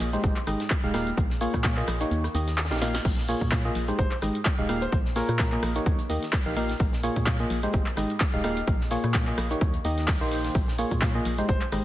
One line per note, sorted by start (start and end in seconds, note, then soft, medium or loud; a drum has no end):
0.00 0.17 A#1 medium
0.00 open hi-hat loud
0.00 tambourine medium
0.00 shaker medium
0.13 0.36 G#2 medium
0.13 0.36 G#3 medium
0.13 0.36 D#4 medium
0.13 0.36 G4 medium
0.13 0.36 C5 medium
0.13 closed hi-hat medium
0.13 tambourine soft
0.13 shaker soft
0.23 0.33 G#1 loud
0.23 kick loud
0.23 closed hi-hat medium
0.23 tambourine medium
0.23 shaker medium
0.23 shaker soft
0.36 clap soft
0.36 closed hi-hat soft
0.36 tambourine soft
0.47 0.56 G#1 medium
0.47 0.62 G#2 medium
0.47 0.62 G#3 medium
0.47 0.62 D#4 medium
0.47 0.62 G4 medium
0.47 0.62 D#5 medium
0.47 cross-stick medium
0.47 open hi-hat loud
0.47 tambourine medium
0.47 shaker medium
0.60 snare medium
0.60 closed hi-hat medium
0.60 tambourine soft
0.60 shaker soft
0.70 kick loud
0.70 clap loud
0.70 closed hi-hat medium
0.70 tambourine medium
0.70 shaker medium
0.70 shaker soft
0.84 1.12 D#1 medium
0.84 0.93 G#2 medium
0.84 0.93 G#3 medium
0.84 0.93 D#4 medium
0.84 0.93 G4 medium
0.84 0.93 F5 medium
0.84 tambourine soft
0.84 shaker medium
0.94 1.09 A#2 medium
0.94 1.09 G#3 medium
0.94 1.09 D#4 medium
0.94 1.09 G4 medium
0.94 1.09 F5 loud
0.94 cross-stick medium
0.94 snare medium
0.94 open hi-hat loud
0.94 tambourine medium
0.94 shaker medium
1.07 closed hi-hat medium
1.07 tambourine soft
1.07 shaker medium
1.07 shaker soft
1.17 1.48 A#1 loud
1.17 kick loud
1.17 closed hi-hat medium
1.17 tambourine soft
1.17 shaker medium
1.17 shaker soft
1.30 snare soft
1.30 tambourine soft
1.41 1.74 A#2 medium
1.41 1.74 A#3 medium
1.41 1.74 F4 medium
1.41 1.74 G#4 medium
1.41 1.74 C#5 medium
1.41 open hi-hat loud
1.41 tambourine medium
1.41 shaker medium
1.54 1.83 A#2 loud
1.54 kick medium
1.54 cross-stick medium
1.54 closed hi-hat medium
1.54 tambourine soft
1.54 shaker soft
1.64 kick loud
1.64 snare loud
1.64 clap loud
1.64 closed hi-hat medium
1.64 tambourine soft
1.64 shaker medium
1.64 shaker soft
1.77 1.97 A#2 medium
1.77 1.97 A#3 medium
1.77 1.97 F4 medium
1.77 1.97 G#4 medium
1.77 1.97 D#5 medium
1.77 clap soft
1.77 tambourine soft
1.87 2.05 A#1 medium
1.87 cross-stick medium
1.87 open hi-hat loud
1.87 tambourine medium
1.87 shaker medium
2.01 2.23 D#3 medium
2.01 2.23 A#3 medium
2.01 2.23 D#4 medium
2.01 2.23 G4 medium
2.01 2.23 C#5 medium
2.01 closed hi-hat medium
2.01 closed hi-hat soft
2.01 tambourine soft
2.01 shaker soft
2.11 2.28 D#2 medium
2.11 closed hi-hat medium
2.11 tambourine medium
2.11 shaker medium
2.11 shaker soft
2.24 cross-stick medium
2.24 closed hi-hat soft
2.24 tambourine soft
2.35 2.72 D#2 loud
2.35 2.50 D#3 medium
2.35 2.50 A#3 medium
2.35 2.50 D#4 medium
2.35 2.50 G4 medium
2.35 2.50 D#5 medium
2.35 open hi-hat loud
2.35 tambourine medium
2.35 shaker medium
2.48 snare soft
2.48 closed hi-hat medium
2.48 tambourine soft
2.48 shaker soft
2.57 snare medium
2.57 clap loud
2.57 closed hi-hat medium
2.57 tambourine medium
2.57 shaker medium
2.57 shaker soft
2.65 snare loud
2.65 shaker medium
2.71 3.00 A#1 loud
2.71 2.80 D#3 medium
2.71 2.80 A#3 medium
2.71 2.80 D#4 medium
2.71 2.80 G4 medium
2.71 2.80 F5 medium
2.71 snare medium
2.71 tambourine soft
2.71 shaker medium
2.76 snare medium
2.76 shaker medium
2.81 2.97 A#2 medium
2.81 2.97 A#3 medium
2.81 2.97 D#4 medium
2.81 2.97 G4 medium
2.81 2.97 F5 loud
2.81 snare medium
2.81 open hi-hat loud
2.81 tambourine loud
2.81 shaker medium
2.94 snare soft
2.94 snare medium
2.94 closed hi-hat medium
2.94 tambourine soft
2.94 shaker soft
3.05 3.35 A#1 loud
3.05 kick loud
3.05 closed hi-hat medium
3.05 crash medium
3.05 tambourine medium
3.05 shaker loud
3.05 shaker soft
3.17 snare soft
3.17 tambourine soft
3.28 3.62 A#2 medium
3.28 3.62 A#3 medium
3.28 3.62 F4 medium
3.28 3.62 G#4 medium
3.28 3.62 C#5 medium
3.28 open hi-hat loud
3.28 tambourine medium
3.28 shaker medium
3.41 3.70 A#2 loud
3.41 kick medium
3.41 closed hi-hat medium
3.41 tambourine soft
3.41 shaker soft
3.51 kick loud
3.51 snare loud
3.51 clap loud
3.51 closed hi-hat medium
3.51 tambourine medium
3.51 shaker medium
3.51 shaker soft
3.65 3.84 A#2 medium
3.65 3.84 A#3 medium
3.65 3.84 F4 medium
3.65 3.84 G#4 medium
3.65 3.84 D#5 medium
3.75 3.92 A#1 medium
3.75 open hi-hat loud
3.75 tambourine loud
3.75 shaker medium
3.88 4.11 G#2 medium
3.88 4.11 G#3 medium
3.88 4.11 D#4 medium
3.88 4.11 G4 medium
3.88 4.11 C5 medium
3.88 closed hi-hat medium
3.88 tambourine soft
3.88 shaker soft
3.99 4.08 G#1 loud
3.99 4.13 C5 medium
3.99 kick loud
3.99 closed hi-hat medium
3.99 tambourine medium
3.99 shaker medium
3.99 shaker soft
4.11 clap soft
4.11 closed hi-hat soft
4.11 tambourine soft
4.21 4.31 G#1 medium
4.21 4.37 G#2 medium
4.21 4.37 G#3 medium
4.21 4.37 D#4 medium
4.21 4.37 G4 medium
4.21 4.37 D#5 medium
4.21 cross-stick medium
4.21 open hi-hat loud
4.21 tambourine medium
4.21 shaker medium
4.35 closed hi-hat medium
4.35 tambourine soft
4.35 shaker soft
4.45 kick loud
4.45 snare loud
4.45 clap loud
4.45 closed hi-hat medium
4.45 tambourine medium
4.45 shaker loud
4.45 shaker soft
4.58 4.87 D#1 medium
4.58 4.67 G#2 medium
4.58 4.67 G#3 medium
4.58 4.67 D#4 medium
4.58 4.67 G4 medium
4.58 4.67 F5 medium
4.58 tambourine soft
4.69 4.84 A#2 medium
4.69 4.84 G#3 medium
4.69 4.84 D#4 medium
4.69 4.84 G4 medium
4.69 4.84 F5 loud
4.69 cross-stick medium
4.69 open hi-hat loud
4.69 tambourine loud
4.69 shaker medium
4.81 4.95 C5 medium
4.81 closed hi-hat soft
4.81 closed hi-hat medium
4.81 tambourine soft
4.81 shaker soft
4.92 5.22 A#1 loud
4.92 kick loud
4.92 closed hi-hat medium
4.92 tambourine medium
4.92 shaker medium
4.92 shaker soft
5.05 snare soft
5.05 tambourine soft
5.15 5.49 A#2 medium
5.15 5.49 A#3 medium
5.15 5.49 F4 medium
5.15 5.49 G#4 medium
5.15 5.82 A#4 medium
5.15 5.49 C#5 loud
5.15 snare medium
5.15 open hi-hat loud
5.15 tambourine loud
5.15 shaker medium
5.29 5.58 A#2 loud
5.29 cross-stick medium
5.29 closed hi-hat medium
5.29 tambourine soft
5.29 shaker soft
5.39 kick loud
5.39 snare loud
5.39 clap loud
5.39 closed hi-hat medium
5.39 tambourine medium
5.39 shaker medium
5.39 shaker soft
5.52 5.72 A#2 medium
5.52 5.72 A#3 medium
5.52 5.72 F4 medium
5.52 5.72 G#4 medium
5.52 5.72 D#5 medium
5.52 clap soft
5.63 5.80 A#1 medium
5.63 cross-stick medium
5.63 open hi-hat loud
5.63 tambourine loud
5.63 shaker medium
5.76 5.98 D#3 medium
5.76 5.98 A#3 medium
5.76 5.98 D#4 medium
5.76 5.98 G4 medium
5.76 5.98 C#5 medium
5.76 closed hi-hat medium
5.76 closed hi-hat soft
5.76 tambourine soft
5.76 shaker soft
5.86 5.95 D#2 loud
5.86 kick loud
5.86 closed hi-hat medium
5.86 tambourine medium
5.86 shaker medium
5.86 shaker soft
5.99 closed hi-hat soft
5.99 tambourine soft
6.09 6.19 D#2 medium
6.09 6.25 D#3 medium
6.09 6.25 A#3 medium
6.09 6.25 D#4 medium
6.09 6.25 G4 medium
6.09 6.25 D#5 medium
6.09 open hi-hat loud
6.09 tambourine medium
6.09 shaker medium
6.23 snare soft
6.23 closed hi-hat medium
6.23 tambourine soft
6.23 shaker soft
6.32 kick loud
6.32 snare loud
6.32 clap loud
6.32 closed hi-hat medium
6.32 open hi-hat medium
6.32 tambourine medium
6.32 shaker soft
6.46 6.75 A#1 medium
6.46 6.55 D#3 medium
6.46 6.55 A#3 medium
6.46 6.55 D#4 medium
6.46 6.55 G4 medium
6.46 6.55 F5 medium
6.46 tambourine soft
6.56 6.72 A#2 medium
6.56 6.72 A#3 medium
6.56 6.72 D#4 medium
6.56 6.72 G4 medium
6.56 6.72 F5 loud
6.56 open hi-hat loud
6.56 tambourine medium
6.56 shaker medium
6.68 snare soft
6.68 closed hi-hat medium
6.68 tambourine soft
6.68 shaker soft
6.80 7.10 A#1 loud
6.80 kick loud
6.80 closed hi-hat medium
6.80 tambourine medium
6.80 shaker soft
6.80 shaker medium
6.92 snare medium
6.92 tambourine soft
7.03 7.37 A#2 medium
7.03 7.37 A#3 medium
7.03 7.37 F4 medium
7.03 7.37 G#4 medium
7.03 7.37 C#5 loud
7.03 open hi-hat loud
7.03 tambourine medium
7.03 shaker medium
7.16 7.45 A#2 loud
7.16 kick medium
7.16 closed hi-hat medium
7.16 tambourine soft
7.16 shaker soft
7.26 kick loud
7.26 snare loud
7.26 clap loud
7.26 closed hi-hat medium
7.26 tambourine medium
7.26 shaker loud
7.26 shaker soft
7.40 7.59 A#2 medium
7.40 7.59 A#3 medium
7.40 7.59 F4 medium
7.40 7.59 G#4 medium
7.40 7.59 D#5 medium
7.50 7.67 A#1 medium
7.50 open hi-hat loud
7.50 tambourine medium
7.50 shaker medium
7.63 7.86 G#2 medium
7.63 7.86 G#3 medium
7.63 7.86 D#4 medium
7.63 7.86 G4 medium
7.63 7.86 C5 medium
7.63 closed hi-hat medium
7.63 tambourine soft
7.63 shaker soft
7.73 7.83 G#1 loud
7.73 kick loud
7.73 closed hi-hat medium
7.73 shaker medium
7.74 tambourine medium
7.74 shaker soft
7.86 clap soft
7.86 closed hi-hat soft
7.86 tambourine soft
7.97 8.06 G#1 medium
7.97 8.12 G#2 medium
7.97 8.12 G#3 medium
7.97 8.12 D#4 medium
7.97 8.12 G4 medium
7.97 8.12 D#5 medium
7.97 cross-stick medium
7.97 open hi-hat loud
7.97 tambourine loud
7.97 shaker medium
8.09 closed hi-hat medium
8.09 tambourine soft
8.09 shaker soft
8.20 kick loud
8.20 snare loud
8.20 clap loud
8.20 closed hi-hat medium
8.20 tambourine medium
8.20 shaker medium
8.20 shaker soft
8.33 8.62 D#1 medium
8.33 8.43 G#2 medium
8.33 8.43 G#3 medium
8.33 8.43 D#4 medium
8.33 8.43 G4 medium
8.33 8.43 F5 medium
8.33 tambourine soft
8.43 8.59 A#2 medium
8.43 8.59 G#3 medium
8.43 8.59 D#4 medium
8.43 8.59 G4 medium
8.43 8.59 F5 loud
8.43 cross-stick medium
8.43 open hi-hat loud
8.43 tambourine loud
8.43 shaker medium
8.57 closed hi-hat soft
8.57 closed hi-hat medium
8.57 tambourine soft
8.57 shaker soft
8.67 8.98 A#1 loud
8.67 kick loud
8.67 closed hi-hat medium
8.67 tambourine medium
8.67 shaker loud
8.67 shaker soft
8.81 snare soft
8.81 tambourine soft
8.90 9.24 A#2 medium
8.90 9.24 A#3 medium
8.90 9.24 F4 medium
8.90 9.24 G#4 medium
8.90 9.24 C#5 loud
8.90 snare soft
8.90 open hi-hat loud
8.90 tambourine medium
8.90 shaker medium
9.04 9.33 A#2 loud
9.04 cross-stick medium
9.04 closed hi-hat medium
9.04 tambourine soft
9.04 shaker soft
9.14 kick loud
9.14 snare loud
9.14 clap loud
9.14 closed hi-hat medium
9.14 tambourine medium
9.14 shaker medium
9.14 shaker soft
9.27 9.47 A#2 medium
9.27 9.47 A#3 medium
9.27 9.47 F4 medium
9.27 9.47 G#4 medium
9.27 9.47 D#5 medium
9.27 clap soft
9.37 9.55 A#1 medium
9.37 cross-stick medium
9.37 open hi-hat loud
9.37 tambourine medium
9.37 shaker medium
9.51 9.73 D#3 medium
9.51 9.73 A#3 medium
9.51 9.73 D#4 medium
9.51 9.73 G4 medium
9.51 9.73 C#5 medium
9.51 closed hi-hat medium
9.51 closed hi-hat soft
9.51 tambourine soft
9.51 shaker soft
9.61 9.78 D#2 medium
9.61 kick loud
9.61 closed hi-hat soft
9.61 tambourine medium
9.61 shaker medium
9.61 shaker soft
9.74 closed hi-hat soft
9.74 tambourine soft
9.84 10.23 D#2 loud
9.84 10.08 D#3 medium
9.84 10.08 A#3 medium
9.84 10.08 D#4 medium
9.84 10.08 G4 medium
9.84 10.08 D#5 medium
9.84 open hi-hat loud
9.84 tambourine loud
9.84 shaker medium
9.97 snare medium
9.97 closed hi-hat medium
9.97 tambourine soft
9.97 shaker soft
10.08 kick loud
10.08 snare loud
10.08 clap loud
10.08 closed hi-hat soft
10.08 open hi-hat medium
10.08 tambourine medium
10.08 shaker soft
10.21 10.50 A#1 loud
10.21 10.54 D#3 medium
10.21 10.54 A#3 medium
10.21 10.54 D#4 medium
10.21 10.54 G4 medium
10.21 10.54 C5 loud
10.21 tambourine soft
10.31 open hi-hat loud
10.31 tambourine medium
10.31 shaker medium
10.44 snare medium
10.44 closed hi-hat medium
10.44 tambourine soft
10.44 shaker soft
10.54 10.85 A#1 loud
10.54 kick loud
10.54 closed hi-hat medium
10.54 tambourine medium
10.54 shaker loud
10.54 shaker soft
10.68 snare medium
10.68 tambourine soft
10.78 11.12 A#2 medium
10.78 11.12 A#3 medium
10.78 11.12 F4 medium
10.78 11.12 G#4 medium
10.78 11.12 C#5 medium
10.78 open hi-hat loud
10.78 tambourine loud
10.78 shaker medium
10.91 11.20 A#2 loud
10.91 kick medium
10.91 closed hi-hat medium
10.91 tambourine soft
10.91 shaker soft
11.02 kick loud
11.02 snare loud
11.02 clap loud
11.02 closed hi-hat medium
11.02 tambourine medium
11.02 shaker medium
11.02 shaker soft
11.15 11.34 A#2 medium
11.15 11.34 A#3 medium
11.15 11.34 F4 medium
11.15 11.34 G#4 medium
11.15 11.34 D#5 medium
11.25 11.42 A#1 medium
11.25 open hi-hat loud
11.25 tambourine loud
11.25 shaker medium
11.38 11.61 G#2 medium
11.38 11.61 G#3 medium
11.38 11.61 D#4 medium
11.38 11.61 G4 medium
11.38 11.61 C5 medium
11.38 closed hi-hat medium
11.38 tambourine soft
11.38 shaker soft
11.49 11.58 G#1 loud
11.49 11.64 C5 medium
11.49 kick loud
11.49 closed hi-hat medium
11.49 tambourine medium
11.49 shaker medium
11.49 shaker soft
11.61 clap soft
11.61 closed hi-hat soft
11.61 tambourine soft
11.72 11.81 G#1 medium
11.72 11.85 G#2 medium
11.72 11.85 G#3 medium
11.72 11.85 D#4 medium
11.72 11.85 G4 medium
11.72 11.85 D#5 medium
11.72 cross-stick medium
11.72 open hi-hat loud
11.72 tambourine medium
11.72 shaker medium